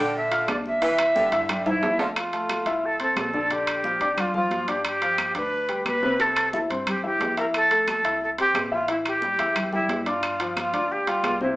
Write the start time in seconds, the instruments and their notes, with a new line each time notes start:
Already playing: upright bass A#2, upright piano D4, flute G5
0.00 saxophone section D3, upright piano D5 D6
0.15 flute E5, high conga
0.31 upright piano F4 F5 F6, high conga, high timbale
0.48 upright bass C2, upright piano D4 D5 D6, flute D5, high conga, high timbale, low timbale, claves
0.66 flute E5, high conga
0.81 upright piano E3 E4 E5, saxophone section E3, high conga, high timbale
0.99 high conga, high timbale, claves
1.15 saxophone section D3, upright piano G3 G4 G5, high conga
1.31 upright bass G2, upright piano E4 E5 E6, high timbale
1.49 upright piano G3 G4 G5, high conga, low conga, high timbale, claves
1.66 upright piano E3 E4 E5, flute E4, high conga, low conga, high timbale
1.82 upright bass F2, high conga, low timbale
1.99 saxophone section D3, upright piano A3 A4 A5, flute F4, high conga, low timbale
2.16 flute F4, high conga, high timbale, claves
2.33 upright piano A3 A4 A5, high conga, high timbale
2.49 high conga, high timbale, claves
2.65 upright bass C2, upright piano E4 E5 E6, high conga, high timbale
2.83 flute A4, high conga
3.00 upright piano C4 C5 C6, flute A4, high conga, high timbale
3.16 upright bass A#1, flute A4, high conga, high timbale, low timbale, claves
3.34 upright piano D3 D4 D5, high conga
3.51 upright piano D3 D4 D5, flute G4, high conga, high timbale
3.67 high conga, high timbale, claves
3.84 upright piano F3 F4 F5, high conga
4.00 upright bass F2, upright piano D4 D5 D6, high timbale
4.17 flute F4, high conga, low conga, high timbale, claves
4.33 upright bass F2, upright piano F3 F4 F5, flute F4, high conga, low conga
4.50 upright bass G2, high conga, high timbale
4.68 upright piano D4 D5 D6, flute G4, high conga, high timbale
4.85 flute G4, high conga, high timbale, claves
5.02 upright piano F3 F4 F5, high conga, high timbale
5.18 high conga, high timbale, claves
5.35 upright bass D2, upright piano D4 D5 D6, flute B4, high conga, high timbale
5.52 high conga
5.69 upright piano G3 G4 G5, high conga, high timbale
5.85 upright bass C2, flute B4, high conga, high timbale, claves
6.03 upright piano C3 C4 C5, high conga
6.19 upright piano C3 C4 C5, flute A4, high conga, high timbale
6.36 high conga, high timbale, claves
6.53 upright piano E3 E4 E5, high conga
6.70 upright bass G2, upright piano C4 C5 C6, high conga, high timbale
6.87 flute G4, high conga, low conga, high timbale, claves
7.03 upright bass G2, upright piano E3 E4 E5, flute G4, high conga
7.20 upright bass F2, high conga, high timbale, low timbale
7.37 upright piano E4 E5 E6, flute A#4, high conga, high timbale
7.54 flute A4, high conga, high timbale, claves
7.71 upright piano A3 A4 A5, high conga, high timbale
7.88 flute A4, high conga, high timbale, claves
8.04 upright bass C2, upright piano E4 E5 E6, high conga, high timbale
8.21 flute A4, high conga
8.38 upright piano C4 C5 C6, flute G4, high conga, high timbale
8.54 upright bass A1, high conga, high timbale, low timbale, claves
8.71 upright piano E3 E4 E5, flute F4
8.88 upright piano E3 E4 E5, flute E4, high conga, high timbale
9.05 flute G4, high conga, high timbale, claves
9.22 upright piano G3 G4 G5, high conga
9.38 upright bass E2, upright piano E4 E5 E6, high conga, high timbale
9.56 high conga, low conga, high timbale, claves
9.73 upright piano G3 G4 G5, flute E4, high conga, low conga
9.88 upright bass G2, high conga, high timbale, low timbale
10.06 upright piano D4 D5 D6, flute F4, high conga, high timbale
10.23 high conga, high timbale, claves
10.40 upright piano F3 F4 F5, high conga, high timbale
10.57 flute F4, high conga, high timbale, claves
10.73 upright bass D2, upright piano D4 D5 D6, high conga, high timbale
10.90 flute G4, high conga
11.07 upright piano G3 G4 G5, flute F4, high conga, high timbale
11.23 upright bass C2, high conga, high timbale, low timbale, claves
11.41 upright piano C3 C4 C5, flute E4, high conga